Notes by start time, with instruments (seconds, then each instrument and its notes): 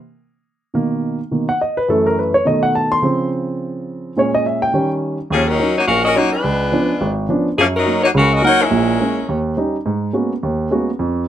0.74 grand piano B2 D#3 A#3
1.31 grand piano B2 D#3 A#3
1.49 grand piano F#5
1.61 grand piano D#5
1.77 grand piano B4
1.88 grand piano F#2 E3 A3 A4
2.06 grand piano A#4
2.19 grand piano B4
2.34 grand piano C#5
2.45 grand piano B2 D#3 A3 D#5
2.63 grand piano F#5
2.75 grand piano A5
2.92 grand piano C6
3.02 grand piano C#3 F3 C4
4.17 grand piano A#2 G#3 C#4 C#5
4.35 grand piano D#5
4.46 grand piano E5
4.62 grand piano G5
4.73 grand piano D#3 G3 C#4
5.30 grand piano D#2, saxophone section F3 A#3 C#4 G#4
5.49 saxophone section F#3 C#4 D#4 A#4
5.59 grand piano F#3 C#4 D#4
5.77 saxophone section A#3 D#4 F#4 C#5
5.87 grand piano A#1, saxophone section C#4 F#4 A#4 F5
6.05 saxophone section C#4 F#4 A#4 D#5
6.16 grand piano F#3 C#4 D#4, saxophone section A#3 D#4 F#4 C#5
6.33 saxophone section G#3 D4 F4 B4
6.44 grand piano C#2
6.72 grand piano F3 B3 C#4 D4
7.01 grand piano G#1
7.29 grand piano F3 B3 C#4 D4
7.58 grand piano F#2, saxophone section F3 A#3 C#4 G#4
7.76 saxophone section F#3 C#4 D#4 A#4
7.86 grand piano F#3 A#3 D#4
8.04 saxophone section A#3 D#4 F#4 C#5
8.14 grand piano C#2 C#3, saxophone section C#4 F#4 A#4 F5
8.33 saxophone section C#4 F#4 A#4 D#5
8.42 grand piano F#3 A#3 D#4, saxophone section D#4 A#4 C#5 F#5
8.62 saxophone section G#3 C#4 E4 A#4
8.70 grand piano A#1 A#2
9.00 grand piano G#3 A#3 C#4
9.29 grand piano D#2
9.57 grand piano G3 C#4 D#4
9.86 grand piano G#2
10.13 grand piano G#3 A#3 B3 C#4 F#4
10.43 grand piano D#2
10.71 grand piano G#3 A#3 B3 C#4 F#4
10.99 grand piano F2